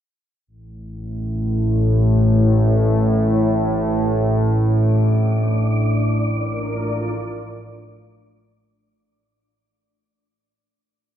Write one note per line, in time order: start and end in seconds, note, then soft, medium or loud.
0.47 8.86 A1 medium
0.47 8.86 A2 medium
0.47 4.63 A3 medium
1.79 4.62 C#5 medium
1.84 4.62 E4 medium
4.60 8.76 A2 medium
4.60 8.78 D4 medium
4.60 8.77 D5 medium
6.29 8.78 A#4 medium
6.29 8.77 D5 medium
6.51 8.77 F4 medium